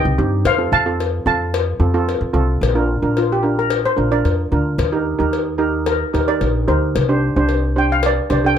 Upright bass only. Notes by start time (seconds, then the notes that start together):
0.05 C2
0.19 G2
0.45 F2
0.72 F2
1.26 F2
1.80 F2
2.21 F2
2.34 C2
2.61 A#1
3.02 A#1
3.98 A#1
4.25 F2
4.52 D2
4.78 D#2
5.20 D#2
6.14 D#2
6.41 A#1
6.68 D2
6.96 C2
7.36 C2
8.31 C2